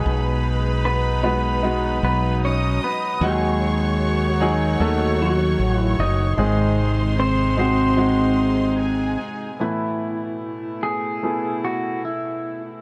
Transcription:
0.00 0.81 B2 medium
0.00 3.18 B2 medium
0.00 1.16 G#3 medium
0.00 1.22 G#3 medium
0.00 1.16 B3 medium
0.00 1.16 D#4 medium
0.00 3.19 D#4 medium
0.00 1.20 G#4 medium
0.00 2.38 B4 medium
0.00 2.38 B5 medium
0.06 1.99 B1 loud
0.85 1.22 B3 medium
0.85 1.21 B4 medium
1.23 3.20 F#3 medium
1.23 1.61 G#3 medium
1.23 1.61 B3 medium
1.23 1.99 B3 medium
1.23 1.62 D#4 medium
1.23 1.62 F#4 medium
1.23 2.03 B4 medium
1.63 3.14 G#3 medium
1.63 3.14 B3 medium
1.63 3.14 D#4 medium
1.63 3.14 F#4 medium
2.03 2.78 B1 medium
2.03 2.41 B3 medium
2.03 2.41 B4 medium
2.43 2.81 C#4 medium
2.43 2.84 C#5 loud
2.43 3.21 D#5 medium
2.43 3.21 D#6 medium
2.84 3.20 B3 medium
2.84 3.24 B4 medium
3.21 4.76 D#2 loud
3.21 4.37 D#3 medium
3.21 6.35 D#3 medium
3.21 4.35 F#3 medium
3.21 6.35 F#3 medium
3.21 4.77 G#3 medium
3.21 4.35 D#4 medium
3.21 6.35 F#4 medium
3.21 4.35 F#4 medium
3.21 4.32 G#4 loud
3.21 6.34 C#5 medium
3.21 6.34 C#6 medium
4.32 4.81 F#4 loud
4.40 4.78 F#3 medium
4.40 4.79 D#4 medium
4.40 4.79 G#4 medium
4.79 5.55 D#2 medium
4.79 6.30 F#3 medium
4.79 6.30 A3 medium
4.79 5.17 A3 medium
4.79 6.30 D#4 medium
4.79 6.30 F#4 medium
4.79 5.22 A4 medium
5.22 5.95 F#3 medium
5.22 5.80 F#4 loud
5.59 5.96 A1 medium
5.80 5.99 E4 loud
5.99 6.35 F#1 medium
5.99 7.14 D#4 medium
5.99 7.19 D#5 loud
6.37 9.16 G#1 loud
6.37 7.54 G#2 medium
6.37 9.57 C3 medium
6.37 7.54 D#3 medium
6.37 7.51 G#3 medium
6.37 9.57 G#3 medium
6.37 7.51 C4 medium
6.37 9.57 D#4 medium
6.37 7.52 D#4 medium
6.37 7.52 G#4 medium
6.37 8.75 C5 medium
6.37 8.75 C6 medium
7.19 7.56 C4 medium
7.19 7.58 C5 medium
7.57 7.95 G#3 medium
7.57 7.96 C4 medium
7.57 9.17 C4 medium
7.57 7.96 D#4 medium
7.57 7.96 F#4 medium
7.57 9.17 C5 medium
7.97 9.52 G#3 medium
7.97 9.52 C4 medium
7.97 9.53 D#4 medium
7.97 9.53 F#4 medium
8.79 9.59 G#4 medium
8.79 9.59 G#5 medium
9.60 10.79 A2 medium
9.60 12.82 B2 medium
9.60 10.79 E3 medium
9.60 11.15 A3 medium
9.60 12.82 A3 medium
9.60 11.15 B3 medium
9.60 12.82 E4 medium
9.60 11.16 E4 medium
9.60 10.87 E4 medium
9.60 11.16 B4 medium
10.83 11.64 G#4 medium
11.23 12.77 A3 medium
11.23 12.77 B3 medium
11.23 12.78 E4 medium
11.23 12.78 G#4 medium
11.65 12.02 F#4 medium
12.05 12.61 E4 medium

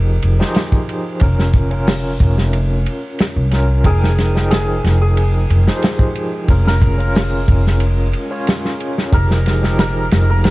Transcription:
0.00 0.20 F1 loud
0.00 0.39 F3 medium
0.00 0.40 D#4 medium
0.00 0.40 G4 medium
0.00 0.40 G#4 medium
0.00 1.22 A#4 medium
0.22 0.38 F1 medium
0.22 ride medium
0.39 0.59 F3 medium
0.39 0.59 D#4 medium
0.39 0.59 G4 medium
0.39 0.59 G#4 medium
0.39 0.59 C5 loud
0.39 snare medium
0.54 snare loud
0.54 ride medium
0.72 kick loud
0.89 ride medium
1.20 2.17 F1 medium
1.20 1.67 C#4 medium
1.20 1.68 F4 medium
1.20 1.68 A#4 medium
1.20 kick loud
1.20 ride medium
1.39 snare soft
1.53 kick loud
1.53 ride medium
1.70 3.00 C#4 medium
1.70 3.00 F4 medium
1.70 3.01 A#4 medium
1.70 ride soft
1.87 snare loud
1.87 open hi-hat medium
2.20 2.84 F1 medium
2.20 kick loud
2.20 ride medium
2.38 snare soft
2.53 ride medium
2.86 ride medium
3.19 snare medium
3.19 ride medium
3.36 3.82 C2 loud
3.51 3.81 C#4 medium
3.51 3.81 F4 medium
3.51 3.82 A#4 medium
3.51 snare soft
3.51 ride medium
3.84 4.81 F1 medium
3.84 4.31 F3 medium
3.84 10.51 G#3 medium
3.84 4.31 D#4 medium
3.84 10.51 G#4 medium
3.84 4.32 G#4 medium
3.84 4.50 G#4 medium
3.84 4.32 A#4 medium
3.84 4.31 G5 medium
3.84 kick loud
3.84 ride medium
4.04 snare soft
4.18 snare soft
4.18 ride medium
4.34 5.63 F3 medium
4.34 5.64 D#4 medium
4.34 5.65 G#4 medium
4.34 5.65 A#4 medium
4.34 5.64 G5 medium
4.34 snare soft
4.51 5.01 G#4 medium
4.51 snare loud
4.51 ride medium
4.84 5.47 F1 medium
4.84 snare soft
4.84 ride medium
5.01 8.05 G#4 medium
5.17 ride medium
5.50 5.65 F1 loud
5.50 ride medium
5.67 5.86 F3 loud
5.67 5.86 D#4 medium
5.67 5.87 G4 medium
5.67 5.87 G#4 medium
5.67 5.87 C5 loud
5.67 snare medium
5.82 snare loud
5.82 ride medium
5.99 kick loud
6.15 ride medium
6.48 7.45 F1 medium
6.48 6.95 C#4 medium
6.48 6.95 F4 medium
6.48 6.96 A#4 loud
6.48 kick loud
6.48 ride medium
6.67 9.13 A#4 medium
6.67 snare medium
6.82 kick medium
6.82 ride medium
6.98 8.27 C#4 medium
6.98 8.28 F4 medium
6.98 8.28 A#4 medium
6.98 ride soft
7.15 snare loud
7.15 open hi-hat medium
7.48 8.11 F1 medium
7.48 kick loud
7.48 ride medium
7.67 snare soft
7.80 ride medium
8.13 ride medium
8.31 8.50 C#4 loud
8.31 8.50 F4 medium
8.31 8.51 C#5 loud
8.47 snare loud
8.47 ride medium
8.65 snare soft
8.80 ride medium
8.98 snare soft
9.12 10.09 F1 medium
9.12 9.58 F3 medium
9.12 9.59 D#4 medium
9.12 9.59 G4 medium
9.12 9.59 G#4 medium
9.12 9.59 A#4 loud
9.12 9.79 A#4 medium
9.12 kick loud
9.12 ride medium
9.31 snare soft
9.46 snare soft
9.46 ride medium
9.61 10.51 F3 medium
9.61 10.51 D#4 medium
9.61 10.51 G4 medium
9.61 10.51 G#4 medium
9.61 10.51 A#4 medium
9.61 snare soft
9.79 10.30 A#4 loud
9.79 snare loud
9.79 ride medium
10.11 10.51 F1 loud
10.11 snare loud
10.11 ride medium
10.30 10.51 A#4 medium
10.44 snare loud
10.44 ride medium

